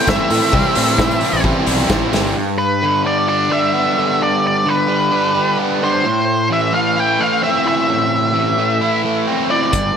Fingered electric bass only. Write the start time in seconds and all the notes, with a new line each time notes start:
0.08 G1
0.30 A2
0.53 C2
0.77 A2
1.33 A1
1.67 B1
1.90 A1
2.12 G1
9.73 G1